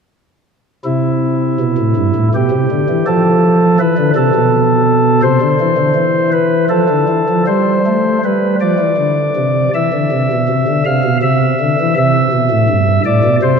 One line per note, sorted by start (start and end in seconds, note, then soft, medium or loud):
0.84 1.57 C3 medium
0.84 2.28 E4 medium
1.60 1.76 B2 medium
1.78 1.93 A2 medium
1.97 2.12 G2 medium
2.15 2.30 A2 medium
2.34 2.49 B2 medium
2.34 3.05 G4 medium
2.51 2.66 C3 medium
2.71 2.86 D3 medium
2.89 3.04 E3 medium
3.07 3.78 F3 medium
3.07 3.78 A4 medium
3.79 3.95 E3 medium
3.79 4.10 B4 loud
3.98 4.13 D3 medium
4.16 4.31 C3 medium
4.16 5.20 A4 loud
4.35 5.21 B2 medium
5.22 5.38 C3 medium
5.22 6.30 C5 loud
5.41 5.57 D3 medium
5.60 5.75 E3 medium
5.77 5.93 D3 medium
5.95 6.68 E3 medium
6.32 6.65 B4 medium
6.69 6.86 F3 medium
6.69 7.43 A4 medium
6.89 7.05 D3 medium
7.08 7.24 E3 medium
7.29 7.44 F3 soft
7.47 7.79 G3 medium
7.47 8.21 C5 medium
7.86 8.18 A3 medium
8.24 8.55 G3 medium
8.24 8.56 B4 medium
8.61 8.77 F3 medium
8.61 9.71 D5 medium
8.79 8.95 E3 medium
8.97 9.30 D3 medium
9.36 9.68 C3 medium
9.75 9.91 E3 medium
9.75 10.84 E5 medium
9.93 10.09 D3 medium
10.12 10.28 C3 medium
10.32 10.47 B2 medium
10.48 10.65 C3 medium
10.67 10.84 D3 medium
10.85 11.02 C3 medium
10.85 11.17 F5 medium
11.04 11.20 B2 medium
11.22 11.54 C3 medium
11.22 11.94 E5 medium
11.60 11.76 D3 medium
11.80 11.95 E3 medium
11.96 12.27 C3 medium
11.96 13.02 E5 loud
12.32 12.48 B2 medium
12.51 12.66 A2 medium
12.70 13.00 G2 medium
13.06 13.21 A2 medium
13.06 13.36 D5 loud
13.24 13.39 B2 medium
13.42 13.57 C3 medium
13.42 13.60 C5 medium